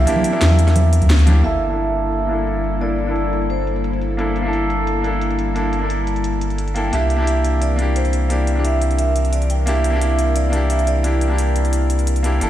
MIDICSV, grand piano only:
0, 0, Header, 1, 2, 480
1, 0, Start_track
1, 0, Tempo, 342857
1, 101, Time_signature, 4, 2, 24, 8
1, 17497, End_track
2, 0, Start_track
2, 0, Title_t, "Grand piano"
2, 0, Program_c, 0, 0
2, 0, Control_c, 0, 64, 127
2, 0, Note_on_c, 0, 58, 88
2, 0, Note_on_c, 0, 62, 80
2, 0, Note_on_c, 0, 64, 82
2, 0, Note_on_c, 0, 67, 95
2, 80, Note_off_c, 0, 58, 0
2, 80, Note_on_c, 0, 58, 83
2, 93, Note_off_c, 0, 62, 0
2, 93, Note_on_c, 0, 62, 73
2, 107, Note_off_c, 0, 64, 0
2, 107, Note_on_c, 0, 64, 72
2, 121, Note_off_c, 0, 67, 0
2, 121, Note_on_c, 0, 67, 87
2, 404, Note_off_c, 0, 58, 0
2, 425, Note_on_c, 0, 58, 78
2, 432, Note_off_c, 0, 62, 0
2, 440, Note_off_c, 0, 64, 0
2, 447, Note_off_c, 0, 67, 0
2, 453, Note_on_c, 0, 62, 72
2, 480, Note_on_c, 0, 64, 69
2, 508, Note_on_c, 0, 67, 82
2, 1737, Note_off_c, 0, 58, 0
2, 1751, Note_off_c, 0, 62, 0
2, 1760, Note_on_c, 0, 58, 80
2, 1765, Note_off_c, 0, 64, 0
2, 1772, Note_on_c, 0, 62, 75
2, 1778, Note_off_c, 0, 67, 0
2, 1786, Note_on_c, 0, 64, 75
2, 1800, Note_on_c, 0, 67, 87
2, 1976, Note_off_c, 0, 58, 0
2, 1989, Note_off_c, 0, 62, 0
2, 1996, Note_off_c, 0, 64, 0
2, 1997, Note_on_c, 0, 58, 83
2, 2003, Note_off_c, 0, 67, 0
2, 2011, Note_on_c, 0, 62, 76
2, 2025, Note_on_c, 0, 64, 78
2, 2038, Note_on_c, 0, 69, 95
2, 2040, Control_c, 0, 64, 0
2, 2300, Control_c, 0, 64, 127
2, 2324, Note_off_c, 0, 58, 0
2, 2345, Note_on_c, 0, 58, 80
2, 2351, Note_off_c, 0, 62, 0
2, 2359, Note_off_c, 0, 64, 0
2, 2365, Note_off_c, 0, 69, 0
2, 2372, Note_on_c, 0, 62, 74
2, 2398, Note_on_c, 0, 64, 73
2, 2425, Note_on_c, 0, 69, 92
2, 3157, Note_off_c, 0, 58, 0
2, 3178, Note_on_c, 0, 58, 77
2, 3185, Note_off_c, 0, 62, 0
2, 3199, Note_off_c, 0, 64, 0
2, 3206, Note_on_c, 0, 62, 73
2, 3213, Note_off_c, 0, 69, 0
2, 3233, Note_on_c, 0, 64, 71
2, 3261, Note_on_c, 0, 69, 88
2, 3892, Note_off_c, 0, 58, 0
2, 3906, Note_off_c, 0, 62, 0
2, 3919, Note_off_c, 0, 64, 0
2, 3924, Note_on_c, 0, 58, 76
2, 3934, Note_off_c, 0, 69, 0
2, 3936, Note_on_c, 0, 62, 66
2, 3950, Note_on_c, 0, 64, 66
2, 3963, Note_on_c, 0, 69, 78
2, 4250, Note_off_c, 0, 58, 0
2, 4271, Note_on_c, 0, 58, 69
2, 4275, Note_off_c, 0, 62, 0
2, 4282, Note_off_c, 0, 64, 0
2, 4288, Note_off_c, 0, 69, 0
2, 4299, Note_on_c, 0, 62, 61
2, 4325, Note_on_c, 0, 64, 62
2, 4352, Note_on_c, 0, 69, 77
2, 5815, Note_off_c, 0, 58, 0
2, 5829, Note_off_c, 0, 62, 0
2, 5842, Note_off_c, 0, 64, 0
2, 5842, Note_on_c, 0, 58, 82
2, 5855, Note_on_c, 0, 62, 77
2, 5856, Note_off_c, 0, 69, 0
2, 5868, Note_on_c, 0, 64, 80
2, 5882, Note_on_c, 0, 69, 94
2, 6167, Note_off_c, 0, 58, 0
2, 6188, Note_on_c, 0, 58, 85
2, 6194, Note_off_c, 0, 62, 0
2, 6201, Note_off_c, 0, 64, 0
2, 6208, Note_off_c, 0, 69, 0
2, 6216, Note_on_c, 0, 62, 79
2, 6242, Note_on_c, 0, 64, 79
2, 6270, Note_on_c, 0, 69, 96
2, 7001, Note_off_c, 0, 58, 0
2, 7022, Note_on_c, 0, 58, 77
2, 7028, Note_off_c, 0, 62, 0
2, 7041, Note_off_c, 0, 64, 0
2, 7050, Note_on_c, 0, 62, 75
2, 7055, Note_off_c, 0, 69, 0
2, 7076, Note_on_c, 0, 64, 72
2, 7103, Note_on_c, 0, 69, 87
2, 7734, Note_off_c, 0, 58, 0
2, 7748, Note_off_c, 0, 62, 0
2, 7761, Note_off_c, 0, 64, 0
2, 7762, Note_on_c, 0, 58, 73
2, 7775, Note_off_c, 0, 69, 0
2, 7775, Note_on_c, 0, 62, 66
2, 7788, Note_on_c, 0, 64, 65
2, 7802, Note_on_c, 0, 69, 78
2, 8086, Note_off_c, 0, 58, 0
2, 8107, Note_on_c, 0, 58, 70
2, 8114, Note_off_c, 0, 62, 0
2, 8120, Note_off_c, 0, 64, 0
2, 8128, Note_off_c, 0, 69, 0
2, 8135, Note_on_c, 0, 62, 62
2, 8162, Note_on_c, 0, 64, 63
2, 8189, Note_on_c, 0, 69, 76
2, 9418, Note_off_c, 0, 58, 0
2, 9432, Note_off_c, 0, 62, 0
2, 9442, Note_on_c, 0, 58, 76
2, 9445, Note_off_c, 0, 64, 0
2, 9454, Note_on_c, 0, 62, 69
2, 9459, Note_off_c, 0, 69, 0
2, 9468, Note_on_c, 0, 64, 68
2, 9481, Note_on_c, 0, 69, 83
2, 9660, Note_off_c, 0, 58, 0
2, 9670, Note_off_c, 0, 62, 0
2, 9677, Note_off_c, 0, 64, 0
2, 9681, Note_on_c, 0, 58, 87
2, 9684, Note_off_c, 0, 69, 0
2, 9695, Note_on_c, 0, 62, 78
2, 9708, Note_on_c, 0, 64, 80
2, 9719, Control_c, 0, 64, 0
2, 9723, Note_on_c, 0, 67, 97
2, 9971, Control_c, 0, 64, 127
2, 10007, Note_off_c, 0, 58, 0
2, 10028, Note_on_c, 0, 58, 87
2, 10034, Note_off_c, 0, 62, 0
2, 10041, Note_off_c, 0, 64, 0
2, 10048, Note_off_c, 0, 67, 0
2, 10056, Note_on_c, 0, 62, 79
2, 10082, Note_on_c, 0, 64, 76
2, 10109, Note_on_c, 0, 67, 93
2, 10842, Note_off_c, 0, 58, 0
2, 10863, Note_on_c, 0, 58, 76
2, 10868, Note_off_c, 0, 62, 0
2, 10881, Note_off_c, 0, 64, 0
2, 10889, Note_on_c, 0, 62, 72
2, 10895, Note_off_c, 0, 67, 0
2, 10918, Note_on_c, 0, 64, 70
2, 10944, Note_on_c, 0, 67, 91
2, 11575, Note_off_c, 0, 58, 0
2, 11588, Note_off_c, 0, 62, 0
2, 11602, Note_off_c, 0, 64, 0
2, 11603, Note_on_c, 0, 58, 74
2, 11615, Note_off_c, 0, 67, 0
2, 11617, Note_on_c, 0, 62, 66
2, 11629, Note_on_c, 0, 64, 67
2, 11643, Note_on_c, 0, 67, 80
2, 11927, Note_off_c, 0, 58, 0
2, 11948, Note_on_c, 0, 58, 66
2, 11953, Note_off_c, 0, 62, 0
2, 11961, Note_off_c, 0, 64, 0
2, 11968, Note_off_c, 0, 67, 0
2, 11974, Note_on_c, 0, 62, 64
2, 12002, Note_on_c, 0, 64, 64
2, 12030, Note_on_c, 0, 67, 78
2, 13494, Note_off_c, 0, 58, 0
2, 13507, Note_off_c, 0, 62, 0
2, 13521, Note_off_c, 0, 64, 0
2, 13521, Note_on_c, 0, 58, 90
2, 13535, Note_off_c, 0, 67, 0
2, 13536, Note_on_c, 0, 62, 80
2, 13550, Note_on_c, 0, 64, 76
2, 13563, Note_on_c, 0, 67, 99
2, 13846, Note_off_c, 0, 58, 0
2, 13867, Note_on_c, 0, 58, 89
2, 13873, Note_off_c, 0, 62, 0
2, 13881, Note_off_c, 0, 64, 0
2, 13888, Note_off_c, 0, 67, 0
2, 13894, Note_on_c, 0, 62, 78
2, 13921, Note_on_c, 0, 64, 80
2, 13948, Note_on_c, 0, 67, 92
2, 14679, Note_off_c, 0, 58, 0
2, 14700, Note_on_c, 0, 58, 81
2, 14707, Note_off_c, 0, 62, 0
2, 14720, Note_off_c, 0, 64, 0
2, 14728, Note_on_c, 0, 62, 76
2, 14734, Note_off_c, 0, 67, 0
2, 14755, Note_on_c, 0, 64, 72
2, 14782, Note_on_c, 0, 67, 86
2, 15413, Note_off_c, 0, 58, 0
2, 15427, Note_off_c, 0, 62, 0
2, 15441, Note_off_c, 0, 64, 0
2, 15443, Note_on_c, 0, 58, 74
2, 15454, Note_off_c, 0, 67, 0
2, 15455, Note_on_c, 0, 62, 69
2, 15468, Note_on_c, 0, 64, 69
2, 15483, Note_on_c, 0, 67, 84
2, 15765, Note_off_c, 0, 58, 0
2, 15786, Note_on_c, 0, 58, 73
2, 15792, Note_off_c, 0, 62, 0
2, 15801, Note_off_c, 0, 64, 0
2, 15808, Note_off_c, 0, 67, 0
2, 15813, Note_on_c, 0, 62, 64
2, 15841, Note_on_c, 0, 64, 65
2, 15868, Note_on_c, 0, 67, 80
2, 17097, Note_off_c, 0, 58, 0
2, 17111, Note_off_c, 0, 62, 0
2, 17118, Note_on_c, 0, 58, 78
2, 17125, Note_off_c, 0, 64, 0
2, 17132, Note_on_c, 0, 62, 69
2, 17139, Note_off_c, 0, 67, 0
2, 17147, Note_on_c, 0, 64, 72
2, 17160, Note_on_c, 0, 67, 82
2, 17339, Note_off_c, 0, 58, 0
2, 17349, Note_off_c, 0, 62, 0
2, 17357, Note_off_c, 0, 64, 0
2, 17360, Note_on_c, 0, 58, 84
2, 17363, Note_off_c, 0, 67, 0
2, 17374, Note_on_c, 0, 62, 78
2, 17388, Note_on_c, 0, 64, 80
2, 17401, Control_c, 0, 64, 0
2, 17401, Note_on_c, 0, 69, 95
2, 17497, Note_off_c, 0, 58, 0
2, 17497, Note_off_c, 0, 62, 0
2, 17497, Note_off_c, 0, 64, 0
2, 17497, Note_off_c, 0, 69, 0
2, 17497, End_track
0, 0, End_of_file